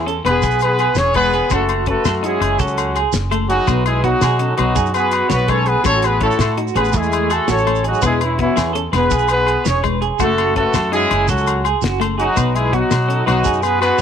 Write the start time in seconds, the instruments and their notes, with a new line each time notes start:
Already playing: upright bass E2
0.06 clean electric guitar C#4 A4, closed hi-hat
0.25 upright bass E1, clean electric guitar B3 B4, horn section B3 G#4 B4, closed hi-hat, low agogo
0.29 trumpet G#4
0.42 upright bass B1, clean electric guitar G#4, kick, closed hi-hat, shekere
0.51 shekere
0.59 horn section B3 G#4 B4, closed hi-hat, low agogo, shekere
0.65 trumpet G#4
0.79 clean electric guitar G#4, closed hi-hat, low agogo
0.95 upright bass E1, horn section C#4 G#4 C#5, clean electric guitar C#5, snare, closed hi-hat, shekere
0.99 trumpet G#4
1.14 clean electric guitar G#3 B4, horn section B3 G#4 B4, trumpet G#4, kick, closed hi-hat, low agogo
1.33 clean electric guitar G#4, closed hi-hat
1.50 upright bass F#1, horn section A3 F#4 A4, clean electric guitar C#4 F#4, trumpet F#4, kick, closed hi-hat, low agogo, shekere
1.69 closed hi-hat, low agogo
1.86 horn section A3 F#4 A4, clean electric guitar C#4 B4, trumpet F#4, kick, closed hi-hat
2.05 upright bass F#2, clean electric guitar A4, snare, closed hi-hat, low agogo, shekere
2.23 horn section G#3 E4 G#4, trumpet C#4, clean electric guitar D#4 F#4, closed hi-hat
2.40 upright bass F#1, clean electric guitar C#4 G#4, closed hi-hat, low agogo
2.59 upright bass C#2, horn section F#3 C#4 F#4, trumpet C#4, clean electric guitar A4, kick, closed hi-hat, shekere
2.68 shekere
2.78 closed hi-hat, low agogo, shekere
2.95 clean electric guitar G#4, closed hi-hat, low agogo
3.13 upright bass F#1, snare, closed hi-hat, shekere
3.31 clean electric guitar A3 A4, closed hi-hat, low agogo
3.49 horn section F#3 D#4 F#4, trumpet D#4, clean electric guitar G#4, closed hi-hat
3.67 upright bass B1, clean electric guitar B3 B4, kick, closed hi-hat, low agogo, shekere
3.85 horn section G#3 E4 G#4, trumpet E4, closed hi-hat, low agogo
4.03 horn section F#3 D#4 F#4, clean electric guitar B3 F#4, trumpet D#4, kick, closed hi-hat
4.21 upright bass B2, clean electric guitar G#4, snare, closed hi-hat, low agogo, shekere
4.39 clean electric guitar C#4 A4, closed hi-hat
4.57 upright bass B1, horn section F#3 D#4 F#4, clean electric guitar B3 B4, trumpet D#4, closed hi-hat, low agogo
4.75 upright bass F#2, clean electric guitar G#4, kick, closed hi-hat, shekere
4.86 shekere
4.94 horn section B3 G#4 B4, trumpet F#4, closed hi-hat, low agogo, shekere
5.11 clean electric guitar F#4, closed hi-hat, low agogo
5.29 upright bass B1, horn section B3 F#4 B4, trumpet F#4, clean electric guitar C#5, snare, closed hi-hat, shekere
5.48 clean electric guitar G#3 B4, horn section C#4 A4 C#5, trumpet A4, kick, closed hi-hat, low agogo
5.65 horn section B3 G#4 B4, clean electric guitar G#4, trumpet G#4, closed hi-hat
5.84 upright bass A1, clean electric guitar C#4 F#4, horn section C#4 A4 C#5, trumpet A4, kick, closed hi-hat, low agogo, shekere
6.02 horn section B3 G#4 B4, trumpet G#4, closed hi-hat, low agogo, shekere
6.20 horn section A3 F#4 A4, clean electric guitar C#4 C#5, trumpet E4, kick, closed hi-hat
6.31 shekere
6.39 upright bass A2, clean electric guitar A4, snare, closed hi-hat, low agogo, shekere
6.57 clean electric guitar D#4 F#4, closed hi-hat
6.68 shekere
6.75 upright bass A1, horn section B3 G#4 B4, clean electric guitar C#4 G#4, trumpet G#4, closed hi-hat, low agogo, shekere
6.85 shekere
6.93 upright bass E2, horn section G#3 E4 G#4, clean electric guitar A3, trumpet E4, kick, closed hi-hat, shekere
7.03 shekere
7.12 closed hi-hat, low agogo, shekere
7.30 horn section A3 F#4 A4, trumpet F#4, clean electric guitar G#4, closed hi-hat, low agogo, shekere
7.48 upright bass A1, horn section C#4 A4 C#5, clean electric guitar F#4, trumpet A4, snare, closed hi-hat, shekere
7.58 shekere
7.66 clean electric guitar A3 A4, closed hi-hat, low agogo
7.75 shekere
7.84 horn section F#3 D#4 F#4, trumpet D#4, clean electric guitar G#4, closed hi-hat
7.94 shekere
8.02 upright bass E1, horn section G#3 E4 G#4, clean electric guitar B3 B4, trumpet E4, kick, closed hi-hat, low agogo, shekere
8.21 horn section E3 C#4 E4, trumpet C#4, closed hi-hat, low agogo
8.38 horn section E3 C#4 E4, clean electric guitar B3 F#4, trumpet B3, kick, closed hi-hat
8.56 upright bass E2, clean electric guitar G#4, snare, closed hi-hat, low agogo, shekere
8.73 clean electric guitar C#4 A4, closed hi-hat
8.92 upright bass E1, clean electric guitar B3 B4, trumpet G#4, horn section G#4, snare, closed hi-hat, low agogo
8.96 horn section B3 B4
9.10 upright bass B1, clean electric guitar G#4, kick, closed hi-hat, shekere
9.19 shekere
9.28 horn section B3 G#4 B4, trumpet G#4, closed hi-hat, low agogo, shekere
9.46 clean electric guitar G#4, closed hi-hat, low agogo
9.64 upright bass E1, horn section G#4, clean electric guitar C#5, snare, closed hi-hat, shekere
9.69 horn section C#4 C#5, trumpet G#4
9.83 clean electric guitar G#3 B4, kick, closed hi-hat, low agogo
10.02 clean electric guitar G#4, closed hi-hat
10.19 upright bass F#1, clean electric guitar A3 F#4, horn section A3 F#4 A4, trumpet F#4, kick, closed hi-hat, low agogo, shekere
10.38 closed hi-hat, low agogo
10.56 horn section A3 F#4 A4, clean electric guitar C#4 B4, trumpet F#4, kick, closed hi-hat
10.73 upright bass F#2, clean electric guitar A4, snare, closed hi-hat, low agogo, shekere
10.92 horn section G#3 E4 G#4, trumpet C#4, clean electric guitar D#4 F#4, closed hi-hat
11.11 upright bass F#1, clean electric guitar G#4, muted clean electric guitar stroke, closed hi-hat, low agogo
11.28 upright bass C#2, horn section F#3 C#4 F#4, trumpet C#4, clean electric guitar A4, kick, closed hi-hat, shekere
11.37 shekere
11.47 closed hi-hat, low agogo, shekere
11.64 clean electric guitar G#4, closed hi-hat, low agogo
11.82 upright bass F#1, clean electric guitar F#4, snare, closed hi-hat, shekere
12.00 clean electric guitar A3 A4, closed hi-hat, low agogo
12.18 horn section F#3 D#4 F#4, trumpet D#4, clean electric guitar G#4, closed hi-hat
12.36 upright bass B1, clean electric guitar B3 B4, kick, closed hi-hat, low agogo, shekere
12.55 horn section G#3 E4 G#4, trumpet E4, closed hi-hat, low agogo
12.73 horn section F#3 D#4 F#4, clean electric guitar B3 F#4, trumpet D#4, kick, closed hi-hat
12.89 upright bass B2, muted clean electric guitar stroke, snare, closed hi-hat, low agogo, shekere
13.08 clean electric guitar C#4 A4, closed hi-hat
13.26 upright bass B1, horn section F#3 D#4 F#4, clean electric guitar B3 B4, trumpet D#4, closed hi-hat, low agogo
13.44 upright bass F#2, clean electric guitar G#4, kick, closed hi-hat, shekere
13.54 shekere
13.62 horn section B3 G#4 B4, trumpet G#4, closed hi-hat, low agogo, shekere
13.80 horn section B3 G#4 B4, trumpet F#4, clean electric guitar F#4, closed hi-hat, low agogo
13.98 shekere